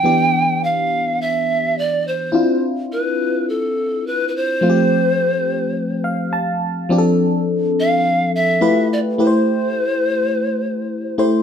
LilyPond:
<<
  \new Staff \with { instrumentName = "Pan flute" } { \time 4/4 \key d \dorian \tempo 4 = 105 g''4 f''4 e''4 d''8 c''8~ | c''8 r8 b'4 a'4 b'16. b'32 c''8~ | c''2. r4 | r4. f''4 e''4 d''8 |
c''2.~ c''8 r8 | }
  \new Staff \with { instrumentName = "FM electric piano" } { \time 4/4 \key d \dorian << { r1 | r1 | r2 r8 f''8 a''4 | r1 |
r1 | } \\ { <e b d' g'>1 | <c' d' e' f'>1 | <f a c' f' g'>1 | <f c' d' g' a'>2. <a e' f' g' b'>4 |
<a e' g' b' c''>2.~ <a e' g' b' c''>8 <a e' g' c''>8 | } >> }
>>